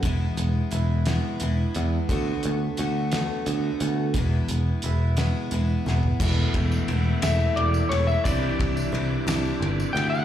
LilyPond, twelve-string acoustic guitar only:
\new Staff \with { instrumentName = "Twelve-string acoustic guitar" } { \time 6/8 \key d \lydian \tempo 4. = 58 <e, b, e gis b e'>8 <e gis b e'>8 <e gis b e'>8 <e, b, e gis b e'>8 <e gis b e'>8 <e gis b e'>8 | <d a b fis'>8 <a b fis'>8 <d a b fis'>8 <d a b fis'>8 <d a b fis'>8 <a b fis'>8 | <e, b, e gis b e'>8 <e gis b e'>8 <e gis b e'>8 <e, b, e gis b e'>8 <e gis b e'>8 <e gis b e'>8 | <e, b, e a b e'>4 <e a b e'>8 <e, b, e a b e'>4 <e a b e'>8 |
<c e g d' e'>4 <e g d' e'>8 <c e g d' e'>4 <g d' e'>8 | }